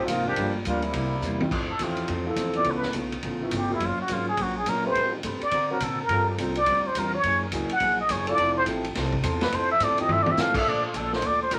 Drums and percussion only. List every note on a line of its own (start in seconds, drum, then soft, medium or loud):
0.08 kick soft
0.08 hi-hat pedal medium
0.08 ride medium
0.36 kick soft
0.36 ride medium
0.65 kick soft
0.65 hi-hat pedal medium
0.65 ride medium
0.82 ride soft
0.93 kick soft
0.93 ride medium
1.22 hi-hat pedal medium
1.40 high tom medium
1.51 kick medium
1.51 crash medium
1.79 kick soft
1.79 hi-hat pedal medium
1.79 ride medium
1.97 ride soft
2.08 kick soft
2.08 ride medium
2.36 kick soft
2.36 hi-hat pedal medium
2.36 ride medium
2.53 ride soft
2.64 kick soft
2.64 ride medium
2.83 snare soft
2.93 kick soft
2.93 hi-hat pedal medium
2.93 ride medium
3.12 ride soft
3.23 kick soft
3.23 ride medium
3.51 kick soft
3.51 hi-hat pedal medium
3.51 ride medium
3.80 kick soft
3.80 ride medium
4.08 kick soft
4.08 hi-hat pedal medium
4.08 ride medium
4.37 kick soft
4.37 ride medium
4.66 kick soft
4.66 hi-hat pedal medium
4.66 ride medium
4.95 kick soft
4.95 ride medium
5.23 kick soft
5.23 hi-hat pedal medium
5.23 ride medium
5.41 ride soft
5.51 kick soft
5.51 ride medium
5.80 kick soft
5.80 hi-hat pedal medium
5.80 ride medium
6.09 kick soft
6.09 ride medium
6.38 kick soft
6.38 hi-hat pedal medium
6.38 ride medium
6.55 ride medium
6.66 kick soft
6.66 ride medium
6.95 kick soft
6.95 hi-hat pedal medium
6.95 ride medium
7.23 kick soft
7.23 ride medium
7.52 kick soft
7.52 hi-hat pedal medium
7.52 ride medium
7.69 ride medium
7.80 kick soft
7.80 ride medium
8.09 kick soft
8.09 hi-hat pedal medium
8.09 ride medium
8.27 ride medium
8.38 kick soft
8.38 ride medium
8.66 kick soft
8.66 hi-hat pedal medium
8.66 ride medium
8.84 ride medium
8.95 kick soft
8.95 snare soft
8.95 ride medium
9.13 kick medium
9.23 kick soft
9.23 hi-hat pedal medium
9.23 ride medium
9.41 snare medium
9.41 ride medium
9.52 kick soft
9.52 ride medium
9.80 kick soft
9.80 hi-hat pedal medium
9.80 ride medium
9.98 ride medium
10.09 high tom medium
10.26 high tom medium
10.37 snare medium
10.37 hi-hat pedal medium
10.54 kick medium
10.54 crash medium
10.65 kick soft
10.94 kick soft
10.94 hi-hat pedal medium
10.94 ride medium
11.13 snare soft
11.22 kick soft
11.22 ride medium
11.51 kick soft
11.51 hi-hat pedal medium
11.51 ride medium